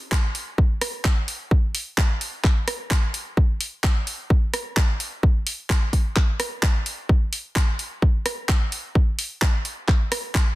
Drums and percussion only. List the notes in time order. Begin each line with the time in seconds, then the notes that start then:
0.12 kick, clap
0.35 open hi-hat
0.58 kick
0.81 cross-stick, open hi-hat
1.05 kick, clap
1.28 open hi-hat
1.51 kick
1.75 open hi-hat
1.98 kick, clap
2.21 open hi-hat
2.44 kick, clap
2.68 cross-stick, open hi-hat
2.91 kick, clap
3.14 open hi-hat
3.37 kick
3.61 open hi-hat
3.84 kick, clap
4.07 open hi-hat
4.30 kick
4.54 cross-stick, open hi-hat
4.77 kick, clap
5.00 open hi-hat
5.23 kick
5.47 open hi-hat
5.70 kick, clap
5.93 kick, open hi-hat
6.16 kick, clap
6.40 cross-stick, open hi-hat
6.63 kick, clap
6.86 open hi-hat
7.09 kick
7.33 open hi-hat
7.56 kick, clap
7.79 open hi-hat
8.02 kick
8.26 cross-stick, open hi-hat
8.49 kick, clap
8.72 open hi-hat
8.95 kick
9.19 open hi-hat
9.42 kick, clap
9.65 open hi-hat
9.88 kick, clap
10.12 cross-stick, open hi-hat
10.35 kick, clap